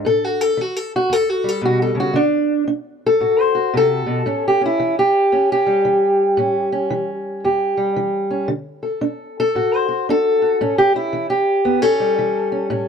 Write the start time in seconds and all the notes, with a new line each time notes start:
0.05 A2 A4
0.24 F#4
0.41 A4
0.57 E3 F#4
0.76 A4
0.96 F#4
1.10 E2 A4
1.29 F#4
1.44 G3
1.49 A4
1.62 B2 F#4
1.82 A4
1.95 C#3
2.00 F#4
2.14 D3 D4
2.68 D4
3.06 A4
3.20 A2 F#4
3.40 C5
3.55 F#4
3.74 C3 A4
4.06 B2
4.26 A2 C#4
4.48 G4
4.61 C#4
4.66 E4
4.80 E3
4.99 G4
5.32 E2 C#4
5.52 G4
5.66 G3
5.85 E3
6.37 A2 C#4
6.72 C#4
6.90 E3
7.44 E2 G4
7.77 G3
7.96 E3
8.31 C#4
8.48 D3
8.83 A4
9.01 D4
9.40 A4
9.55 A2 F#4
9.75 C5
9.89 F#4
10.09 D4 A4
10.42 F#4
10.61 A2 C#4
10.78 G4
10.94 C#4 E4
11.13 E3
11.30 G4
11.65 E2 B3
11.82 C#4 A4
12.00 G3
12.19 E3
12.52 C#4
12.70 A2 C#4